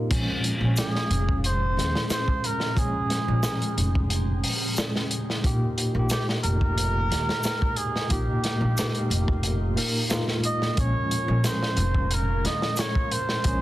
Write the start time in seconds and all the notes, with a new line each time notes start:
Already playing: A#2 A#3 D#4 F4 A#4
0.09 A#1 A#2 F3 G#3 C#4 G#4 F5 A#5, kick, closed hi-hat, crash
0.44 closed hi-hat
0.58 A#1 A#2 F3
0.63 G#3 C#4
0.77 G#4, snare, closed hi-hat, shaker
0.95 snare
1.10 F1, closed hi-hat
1.29 kick
1.44 C5, closed hi-hat
1.77 D#2, snare, closed hi-hat
1.95 snare
2.10 C5, snare, closed hi-hat, shaker
2.28 kick
2.44 A#4, closed hi-hat
2.60 snare
2.75 A#1 A#2 F3 G#3 C#4 G#4 G5, kick, closed hi-hat
3.10 snare, closed hi-hat
3.24 A#2 F3
3.28 A#1 G#3 C#4
3.43 snare, closed hi-hat, shaker
3.62 closed hi-hat
3.77 F1, closed hi-hat
3.95 kick
4.10 closed hi-hat
4.44 open hi-hat
4.76 snare, closed hi-hat, shaker
4.96 snare
5.11 closed hi-hat
5.30 snare
5.43 A#1 A#2 A#3 D#4 G4 A#4 D#5 G5 C6, kick, closed hi-hat
5.78 closed hi-hat
5.92 A#1 A#2 A#3
5.97 D#4 G4
6.10 G4, snare, closed hi-hat, shaker
6.29 snare
6.43 F1 A#4, closed hi-hat
6.61 kick
6.78 closed hi-hat
7.11 D#2, snare, closed hi-hat
7.29 snare
7.43 snare, closed hi-hat, shaker
7.62 kick
7.76 G#4, closed hi-hat
7.96 snare
8.08 A#1 A#2 A#3 D#4, kick, closed hi-hat
8.12 G4 F5
8.44 snare, closed hi-hat
8.57 A#1 A#2 A#3
8.62 D#4 G4
8.77 snare, closed hi-hat, shaker
8.95 closed hi-hat
9.10 F1, closed hi-hat
9.28 kick
9.43 closed hi-hat
9.74 A#2 A#3 D#4 A#4, open hi-hat
10.08 A#2 A#3 D#4, snare, closed hi-hat, shaker
10.12 F4
10.28 snare
10.44 D#5, closed hi-hat
10.62 snare
10.75 A#1 A#2 F3 G#3 C#4 G#5 A#5, kick, closed hi-hat
10.80 C#5
11.11 closed hi-hat
11.24 A#1 A#2 F3
11.29 G#3 C#4
11.44 C5, snare, closed hi-hat, shaker
11.63 snare
11.77 F1, closed hi-hat
11.94 kick
12.11 A#4, closed hi-hat
12.44 D#2 D#5, snare, closed hi-hat
12.62 snare
12.76 C#5, snare, closed hi-hat, shaker
12.95 kick
13.11 C5, closed hi-hat
13.29 snare
13.44 A#1 A#2 F3 G#3 C#4 G5, kick, closed hi-hat